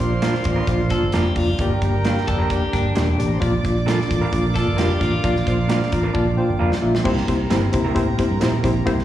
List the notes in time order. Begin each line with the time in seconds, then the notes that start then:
Already playing: F4 A#4 C5 D5 F5 C6
0.00 A#1 A#3 D4 F4 D5, kick, closed hi-hat
0.22 A#3 D4 F4 A#4 D5, snare, closed hi-hat
0.35 snare
0.44 A1 A#3 D4 F4 D5, kick, closed hi-hat
0.56 A#3 D4 F4 A#4
0.67 A#1 A#3 D4 F4 D5, kick, closed hi-hat
0.90 A#3 D4 F4 A4 D5, kick, snare, closed hi-hat
1.02 G1
1.12 F1 A#3 D4 F4 G4 A#4 D5, snare, closed hi-hat
1.36 F1 A#3 D4 F4 D5, kick, open hi-hat
1.59 G1 A#3 D4 G4 A#4 D5 G5 A#5, kick, closed hi-hat
1.82 G1 A#3 D4 G4 D5, kick, closed hi-hat
2.05 A#3 D4 G4 A#4 F5, snare, closed hi-hat
2.18 snare
2.27 F1 A#3 D4 G4 A4 D5, kick, closed hi-hat
2.38 A#3 D4 G4 A#4
2.50 A#3 D4 G4 D5, kick, closed hi-hat
2.73 G1 A#3 D4 G4 D5, kick, snare, closed hi-hat
2.95 E1 A#3 D4 E4 G4 A#4 D5 E5, snare, closed hi-hat
3.04 F4 F5
3.11 G4 G5
3.18 A1 A#3 D4 G4 A4 D5 A5, closed hi-hat
3.26 A#4 A#5
3.34 C5 C6
3.40 A#1 A#3 D4 F4 D5 D6, kick, closed hi-hat
3.63 A#1 A#3 D4 F4 D5, kick, closed hi-hat
3.86 A#3 D4 F4 A4 A#4, snare, closed hi-hat
4.01 snare
4.08 A1 A#3 D4 F4 D5, kick, closed hi-hat
4.21 A#3 D4 F4 A#4
4.32 A#1 A#3 D4 F4 A#4 D5 F5, kick, closed hi-hat
4.54 A#3 D4 F4 A4 D5, kick, snare, closed hi-hat
4.67 G1
4.77 F1 A#3 D4 F4 G4 A#4, snare, closed hi-hat
5.00 A1 A#3 D4 F4 D5, kick, closed hi-hat
5.23 A#1 A#3 D4 F4 D5, kick, closed hi-hat
5.36 snare
5.46 A#1 A#3 D4 F4 C5, kick, closed hi-hat
5.68 A#3 D4 F4 A#4 D5, snare, closed hi-hat
5.83 snare
5.91 A1 A#3 D4 F4 D5 A#5, kick, closed hi-hat
6.03 A#3 D4 F4 A#4
6.13 A#1 A#3 D4 F4 D5 A5, kick
6.37 A#3 D4 F4 C5 G5
6.49 G1
6.59 F1 A#3 D4 F4 A#4 D5 F5
6.72 snare
6.81 A#1 A#3 D4 F4 D5 E5
6.95 snare
7.04 C2 A#3 C4 E4 G4 A#4 C5 A#5, kick, crash
7.17 snare
7.27 C2 A#3 C4 E4 G4 C5, kick, closed hi-hat
7.50 G1 G3 A#3 C4 E4 G4 A#4 C5, snare, closed hi-hat
7.72 C3 A#3 C4 E4 G4 C5, kick, closed hi-hat
7.85 G3 C4 E4 A#4
7.94 A2 A#3 C4 E4 G4 C5, kick, closed hi-hat
8.18 A#3 C4 E4 G4 C5, kick, closed hi-hat
8.30 G2
8.40 A#2 G3 A#3 C4 E4 G4 A#4 C5, snare, closed hi-hat
8.63 A#1 A#3 C4 E4 G4 C5, kick, closed hi-hat
8.86 C2 A#3 C4 E4 G4 C5, kick, closed hi-hat
8.99 snare